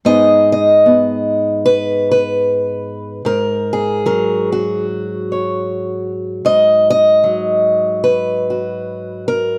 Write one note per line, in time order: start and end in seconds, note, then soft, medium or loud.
0.05 3.24 G#2 medium
0.05 0.85 B3 soft
0.05 3.21 D#4 soft
0.05 3.22 G#4 soft
0.05 0.51 D#5 loud
0.52 1.65 D#5 loud
0.86 3.21 B3 medium
1.66 2.10 B4 loud
2.11 3.25 B4 medium
3.25 6.44 G#2 medium
3.25 4.05 A#4 medium
3.73 4.85 G#4 medium
4.06 7.22 F#3 medium
4.06 4.52 A#4 medium
4.52 6.11 F#4 medium
5.32 6.41 C#5 soft
6.45 9.58 G#2 medium
6.45 6.89 D#5 loud
6.90 8.03 D#5 loud
7.24 9.58 F#3 medium
8.04 9.58 B4 medium
8.50 9.27 F#4 soft
9.28 9.58 A#4 medium